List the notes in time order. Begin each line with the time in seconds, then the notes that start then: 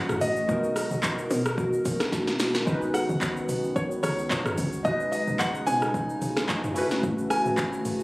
Already playing: G#1 C#3 A3 C#4 E4 F#4 B4 F#5
0.09 cross-stick, mid tom, shaker
0.21 A1 D#5, open hi-hat, shaker
0.36 shaker
0.47 B1 B2 G#3 B3 D#4 F#4 A#4, kick, shaker
0.51 A#4
0.64 shaker
0.76 cross-stick, open hi-hat, shaker
0.91 B1, shaker
1.03 kick, clap, shaker
1.18 shaker
1.31 B2, open hi-hat, shaker
1.45 cross-stick, shaker
1.58 kick, shaker
1.73 shaker
1.85 B1, kick, open hi-hat, shaker
2.00 cross-stick, snare, shaker
2.12 kick, snare, shaker
2.27 snare, shaker
2.39 snare, open hi-hat, shaker
2.55 snare, shaker
2.65 C#2 D#3 G#3 B3 C#4 D#4 F#4, kick, shaker
2.69 B4
2.82 shaker
2.94 F#5, cross-stick, open hi-hat, shaker
3.09 C#2, shaker
3.21 kick, clap, shaker
3.37 shaker
3.49 B1, open hi-hat, shaker
3.64 shaker
3.76 C#5, kick, shaker
3.91 shaker
4.03 C#2 C#5, cross-stick, open hi-hat, shaker
4.19 shaker
4.31 B1, kick, clap, shaker
4.46 cross-stick, mid tom, shaker
4.58 C#2, open hi-hat, shaker
4.73 shaker
4.83 B1 C#3 G#3 C#4 D#4 F#4 D#5, kick, shaker
4.87 B4
5.00 shaker
5.12 D#5, open hi-hat, shaker
5.27 B1, shaker
5.39 F#5, kick, clap, shaker
5.55 shaker
5.67 B2 G#5, open hi-hat, shaker
5.82 cross-stick, shaker
5.94 kick, shaker
6.09 shaker
6.22 B1, open hi-hat, shaker
6.37 cross-stick, snare, shaker
6.49 kick, clap, shaker
6.64 mid tom, shaker
6.74 A3 C#4 E4 F#4, open hi-hat, shaker
6.78 B4
6.91 snare, shaker
7.03 A1, kick, shaker
7.18 shaker
7.30 G#5, cross-stick, open hi-hat, shaker
7.45 A1, shaker
7.57 kick, clap, shaker
7.73 shaker
7.85 G#1, open hi-hat, shaker
8.00 shaker